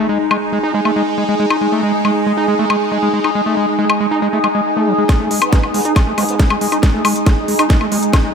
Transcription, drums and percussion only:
0.31 high woodblock medium
0.85 high woodblock soft
1.50 high woodblock medium
2.05 high woodblock soft
2.70 high woodblock medium
3.24 high woodblock soft
3.90 high woodblock medium
4.44 high woodblock soft
5.09 kick loud
5.09 snare soft
5.09 closed hi-hat medium
5.09 high woodblock soft
5.31 open hi-hat loud
5.42 closed hi-hat medium
5.42 high woodblock medium
5.53 kick loud
5.53 snare soft
5.53 closed hi-hat medium
5.63 high woodblock soft
5.74 open hi-hat medium
5.85 closed hi-hat medium
5.96 kick loud
5.96 snare soft
5.96 closed hi-hat medium
5.96 high woodblock medium
6.18 open hi-hat loud
6.18 high woodblock soft
6.29 closed hi-hat medium
6.40 kick loud
6.40 snare medium
6.40 closed hi-hat medium
6.50 high woodblock medium
6.61 open hi-hat loud
6.72 closed hi-hat medium
6.72 high woodblock soft
6.83 kick loud
6.83 snare medium
6.83 closed hi-hat medium
7.05 open hi-hat loud
7.05 high woodblock medium
7.16 closed hi-hat medium
7.26 kick loud
7.26 snare medium
7.26 closed hi-hat medium
7.26 high woodblock soft
7.48 open hi-hat medium
7.59 closed hi-hat medium
7.59 high woodblock medium
7.70 kick loud
7.70 snare medium
7.70 closed hi-hat medium
7.81 high woodblock soft
7.92 open hi-hat loud
8.03 closed hi-hat medium
8.13 kick loud
8.13 snare medium
8.13 closed hi-hat medium
8.13 high woodblock medium

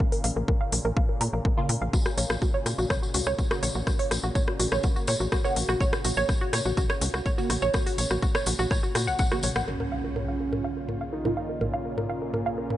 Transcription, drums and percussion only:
0.12 open hi-hat medium
0.24 open hi-hat loud
0.48 kick loud
0.72 open hi-hat loud
0.97 kick loud
1.21 open hi-hat loud
1.45 kick loud
1.69 open hi-hat loud
1.93 kick loud
1.93 tambourine soft
2.06 cross-stick medium
2.06 tambourine soft
2.18 open hi-hat loud
2.18 tambourine medium
2.30 cross-stick medium
2.30 tambourine soft
2.42 kick loud
2.42 tambourine soft
2.66 cross-stick medium
2.66 open hi-hat loud
2.66 tambourine medium
2.78 tambourine soft
2.90 kick loud
2.90 cross-stick medium
2.90 tambourine soft
3.03 tambourine soft
3.14 open hi-hat loud
3.14 tambourine loud
3.27 cross-stick medium
3.27 tambourine soft
3.39 kick loud
3.39 tambourine medium
3.51 cross-stick medium
3.51 tambourine soft
3.63 open hi-hat loud
3.63 tambourine medium
3.75 tambourine soft
3.87 kick loud
3.87 cross-stick soft
3.87 tambourine soft
3.99 open hi-hat medium
3.99 tambourine soft
4.11 cross-stick medium
4.11 open hi-hat loud
4.11 tambourine medium
4.23 tambourine soft
4.35 kick loud
4.35 tambourine soft
4.48 cross-stick medium
4.60 open hi-hat loud
4.60 tambourine medium
4.72 cross-stick medium
4.72 tambourine soft
4.83 kick loud
4.83 tambourine soft
4.96 tambourine soft
5.07 cross-stick soft
5.07 open hi-hat medium
5.07 tambourine medium
5.21 tambourine soft
5.32 kick loud
5.32 cross-stick medium
5.32 tambourine medium
5.45 tambourine soft
5.56 open hi-hat loud
5.56 tambourine medium
5.69 cross-stick medium
5.69 tambourine soft
5.80 kick loud
5.80 tambourine soft
5.93 cross-stick medium
5.93 tambourine soft
6.04 open hi-hat medium
6.04 tambourine medium
6.17 tambourine soft
6.29 kick loud
6.29 cross-stick soft
6.29 tambourine soft
6.53 cross-stick medium
6.53 open hi-hat loud
6.53 tambourine medium
6.66 tambourine soft
6.77 kick loud
6.77 tambourine medium
6.90 cross-stick medium
6.90 tambourine soft
7.01 open hi-hat loud
7.01 tambourine medium
7.14 cross-stick medium
7.14 tambourine soft
7.26 kick loud
7.26 tambourine medium
7.38 tambourine soft
7.50 cross-stick medium
7.50 open hi-hat loud
7.50 tambourine medium
7.62 tambourine soft
7.74 kick loud
7.74 cross-stick medium
7.74 tambourine soft
7.86 open hi-hat medium
7.86 tambourine soft
7.98 open hi-hat loud
7.98 tambourine medium
8.10 cross-stick soft
8.10 tambourine soft
8.22 kick loud
8.22 tambourine soft
8.35 cross-stick medium
8.35 tambourine soft
8.46 open hi-hat loud
8.46 tambourine medium
8.59 tambourine soft
8.71 kick loud
8.71 cross-stick soft
8.71 tambourine medium
8.84 tambourine soft
8.95 cross-stick medium
8.95 open hi-hat medium
8.95 tambourine medium
9.08 tambourine soft
9.19 kick loud
9.19 tambourine medium
9.31 cross-stick soft
9.31 high tom medium
9.31 tambourine soft
9.43 open hi-hat loud
9.43 mid tom medium
9.43 tambourine medium
9.56 cross-stick medium
9.56 mid tom medium
9.56 tambourine soft
9.80 mid tom medium
10.16 mid tom medium
10.53 mid tom medium
10.89 mid tom medium
11.25 mid tom medium
11.61 mid tom medium
11.98 mid tom medium
12.34 mid tom medium
12.70 mid tom medium

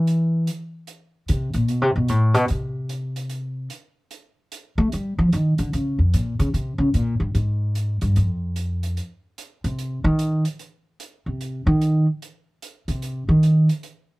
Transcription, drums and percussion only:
0.07 closed hi-hat soft
0.47 closed hi-hat soft
0.87 closed hi-hat soft
1.28 closed hi-hat soft
1.54 closed hi-hat soft
1.68 closed hi-hat soft
2.08 closed hi-hat soft
2.35 closed hi-hat soft
2.48 closed hi-hat soft
2.89 closed hi-hat soft
3.16 closed hi-hat soft
3.30 closed hi-hat soft
3.70 closed hi-hat soft
4.11 closed hi-hat soft
4.52 closed hi-hat soft
4.92 closed hi-hat soft
5.33 closed hi-hat soft
5.58 closed hi-hat soft
5.73 closed hi-hat soft
6.14 closed hi-hat soft
6.40 closed hi-hat soft
6.54 closed hi-hat soft
6.94 closed hi-hat soft
7.35 closed hi-hat soft
7.75 closed hi-hat soft
8.01 closed hi-hat soft
8.16 closed hi-hat soft
8.56 closed hi-hat soft
8.83 closed hi-hat soft
8.97 closed hi-hat soft
9.38 closed hi-hat soft
9.64 closed hi-hat soft
9.79 closed hi-hat soft
10.19 closed hi-hat soft
10.45 closed hi-hat soft
10.59 closed hi-hat soft
11.00 closed hi-hat soft
11.41 closed hi-hat soft
11.81 closed hi-hat soft
12.22 closed hi-hat soft
12.62 closed hi-hat soft
12.88 closed hi-hat soft
13.02 closed hi-hat soft
13.43 closed hi-hat soft
13.69 closed hi-hat soft
13.83 closed hi-hat soft

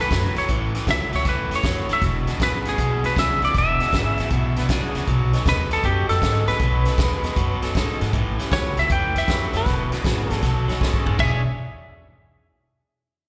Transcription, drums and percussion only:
0.11 kick medium
0.11 snare loud
0.11 closed hi-hat medium
0.36 snare soft
0.36 closed hi-hat medium
0.49 kick medium
0.49 closed hi-hat medium
0.75 snare soft
0.75 closed hi-hat medium
0.87 kick medium
0.87 snare loud
0.87 closed hi-hat medium
1.13 snare soft
1.13 closed hi-hat medium
1.25 kick medium
1.25 snare soft
1.25 closed hi-hat medium
1.51 snare soft
1.51 closed hi-hat medium
1.63 kick medium
1.63 snare loud
1.63 closed hi-hat medium
1.89 snare soft
1.89 closed hi-hat medium
2.02 kick medium
2.02 snare soft
2.02 closed hi-hat medium
2.27 snare soft
2.27 closed hi-hat medium
2.40 kick medium
2.40 snare loud
2.40 closed hi-hat medium
2.65 snare soft
2.65 closed hi-hat medium
2.78 kick medium
2.78 closed hi-hat medium
3.04 snare soft
3.04 closed hi-hat medium
3.16 kick medium
3.16 snare loud
3.16 closed hi-hat medium
3.42 snare soft
3.42 closed hi-hat medium
3.54 kick medium
3.54 snare soft
3.54 closed hi-hat medium
3.80 snare soft
3.80 closed hi-hat medium
3.92 kick medium
3.92 snare loud
3.92 closed hi-hat medium
4.18 snare soft
4.18 closed hi-hat medium
4.30 kick medium
4.30 closed hi-hat medium
4.56 snare soft
4.56 closed hi-hat medium
4.69 kick medium
4.69 snare loud
4.69 closed hi-hat medium
4.95 snare soft
4.95 closed hi-hat medium
5.07 kick medium
5.07 closed hi-hat medium
5.33 snare soft
5.33 closed hi-hat medium
5.46 kick medium
5.46 snare loud
5.46 closed hi-hat medium
5.71 snare soft
5.71 closed hi-hat medium
5.84 kick medium
5.84 closed hi-hat medium
6.09 snare soft
6.09 closed hi-hat medium
6.22 kick medium
6.22 snare loud
6.22 closed hi-hat medium
6.47 snare soft
6.47 closed hi-hat medium
6.59 kick medium
6.59 closed hi-hat medium
6.85 snare soft
6.85 closed hi-hat medium
6.98 kick medium
6.98 snare loud
6.98 closed hi-hat medium
7.23 snare soft
7.23 closed hi-hat medium
7.36 kick medium
7.36 closed hi-hat medium
7.62 snare soft
7.62 closed hi-hat medium
7.75 kick medium
7.75 snare loud
7.75 closed hi-hat medium
8.01 snare soft
8.01 closed hi-hat medium
8.13 kick medium
8.13 closed hi-hat medium
8.39 snare soft
8.39 closed hi-hat medium
8.51 kick medium
8.51 snare loud
8.51 closed hi-hat medium
8.77 snare soft
8.77 closed hi-hat medium
8.89 kick medium
8.89 closed hi-hat medium
9.16 snare soft
9.16 closed hi-hat medium
9.28 kick medium
9.28 snare loud
9.28 closed hi-hat medium
9.53 snare soft
9.53 closed hi-hat medium
9.66 kick medium
9.66 snare soft
9.66 closed hi-hat medium
9.92 snare soft
9.92 closed hi-hat medium
10.04 kick medium
10.04 snare loud
10.04 closed hi-hat medium
10.30 snare soft
10.30 closed hi-hat medium
10.43 kick medium
10.43 snare soft
10.43 closed hi-hat medium
10.69 snare soft
10.69 closed hi-hat medium
10.81 kick medium
10.81 snare medium
10.94 kick medium
11.06 floor tom medium
11.19 kick medium
11.19 crash medium

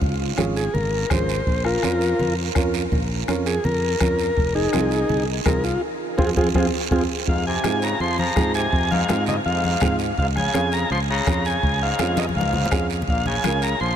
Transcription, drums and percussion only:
0.01 bombo low medium
0.01 high conga soft
0.01 low conga medium
0.01 long guiro medium
0.38 bombo rim medium
0.38 high conga medium
0.38 short guiro medium
0.56 short guiro medium
0.75 high conga soft
0.75 low conga medium
0.75 long guiro medium
1.10 bombo low medium
1.10 bombo rim medium
1.10 high conga medium
1.10 short guiro medium
1.29 short guiro medium
1.46 bombo low medium
1.46 high conga soft
1.46 long guiro medium
1.65 bombo rim medium
1.83 bombo rim medium
1.83 high conga medium
1.83 short guiro medium
2.01 short guiro medium
2.19 high conga soft
2.19 low conga medium
2.19 long guiro medium
2.55 bombo low medium
2.55 bombo rim medium
2.55 high conga medium
2.55 short guiro medium
2.74 short guiro medium
2.92 bombo low medium
2.92 high conga soft
2.92 low conga medium
2.92 long guiro medium
3.28 bombo rim medium
3.28 high conga medium
3.28 short guiro medium
3.46 short guiro medium
3.64 high conga soft
3.64 low conga medium
3.64 long guiro medium
4.00 bombo low medium
4.00 bombo rim medium
4.00 high conga medium
4.00 low conga medium
4.00 short guiro medium
4.19 short guiro medium
4.37 bombo low medium
4.37 high conga soft
4.37 long guiro medium
4.73 bombo rim medium
4.73 high conga medium
4.73 short guiro medium
4.91 short guiro medium
5.09 high conga soft
5.09 low conga medium
5.09 long guiro medium
5.46 bombo low medium
5.46 bombo rim medium
5.46 high conga medium
5.46 short guiro medium
5.64 short guiro medium
6.18 bombo low medium
6.18 high conga loud
6.18 long guiro loud
6.36 bombo low loud
6.36 high conga loud
6.36 long guiro loud
6.55 bombo low loud
6.55 high conga loud
6.55 long guiro loud
6.91 bombo low loud
6.91 high conga loud
7.27 bombo low medium
7.27 high conga soft
7.27 long guiro medium
7.64 bombo rim medium
7.64 high conga medium
7.64 short guiro medium
7.82 short guiro medium
8.00 high conga soft
8.00 long guiro medium
8.19 high conga medium
8.36 bombo low medium
8.36 bombo rim medium
8.36 high conga medium
8.36 short guiro medium
8.54 short guiro medium
8.72 bombo low medium
8.72 high conga soft
8.72 long guiro medium
8.92 high conga medium
9.09 bombo rim medium
9.09 high conga loud
9.09 short guiro medium
9.26 low conga medium
9.26 short guiro medium
9.44 high conga soft
9.44 long guiro medium
9.64 high conga medium
9.80 bombo low medium
9.80 bombo rim medium
9.80 high conga medium
9.80 low conga medium
9.80 short guiro medium
9.99 short guiro medium
10.17 bombo low medium
10.17 high conga soft
10.17 long guiro medium
10.36 bombo rim medium
10.36 high conga medium
10.54 bombo rim medium
10.54 high conga medium
10.54 short guiro medium
10.72 short guiro medium
10.90 high conga soft
10.90 long guiro medium
11.27 bombo low medium
11.27 bombo rim medium
11.27 high conga medium
11.27 short guiro medium
11.45 short guiro medium
11.63 bombo low medium
11.63 high conga soft
11.63 long guiro medium
11.99 bombo rim medium
11.99 high conga medium
11.99 short guiro medium
12.17 high conga medium
12.17 short guiro medium
12.29 high conga medium
12.35 long guiro medium
12.41 high conga medium
12.53 low conga loud
12.66 low conga loud
12.71 bombo low medium
12.71 bombo rim medium
12.71 short guiro medium
12.90 short guiro medium
13.02 low conga medium
13.07 bombo low medium
13.07 high conga soft
13.07 long guiro medium
13.26 high conga medium
13.44 bombo rim medium
13.44 high conga medium
13.44 short guiro medium
13.62 short guiro medium
13.80 high conga soft
13.80 long guiro medium

